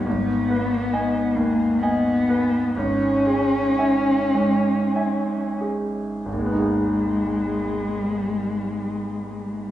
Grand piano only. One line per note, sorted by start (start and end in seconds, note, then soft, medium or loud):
0.06 2.70 G#1 soft
0.50 1.18 B4 soft
0.93 1.32 D#5 soft
0.93 1.32 G#5 soft
1.37 2.08 D#2 soft
1.83 2.23 D#5 soft
1.83 2.24 G#5 soft
2.29 2.75 B4 soft
2.77 6.23 G#1 soft
3.26 4.11 G#4 soft
3.78 4.30 E5 soft
3.78 4.30 G#5 soft
4.35 5.34 G#2 soft
4.95 5.57 E5 soft
4.95 5.58 G#5 soft
5.61 6.26 G#4 soft
6.26 9.71 G#1 soft
6.33 9.71 D#2 soft
6.39 9.71 G#3 soft
6.45 9.71 B3 soft
6.52 9.71 D#4 soft
6.59 9.71 G#4 soft